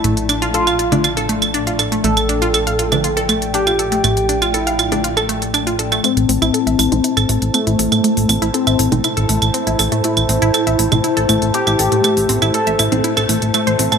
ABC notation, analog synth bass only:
X:1
M:4/4
L:1/16
Q:1/4=120
K:Am
V:1 name="Analog synth bass" clef=bass
A,,,16 | A,,,16 | A,,,16 | z A,,, A,,, A,,, z A,,, A,,, A,,, z A,,, A,,, A,,, z A,,, A,,, A,, |
z A,,, A,,, A,,, z A,,, A,,, A,,, z A,,, A,,, A,,, z A,,, A,,, A,, | z A,,, A,,, A,,, z A,,, A,,, A,,, z A,,, A,,, A,,, z A,,, A,,, A,, | z A,,, A,,, A,,, z A,,, A,,, A,,, z A,,, A,,, A,,, z A,,, A,,, A,, |]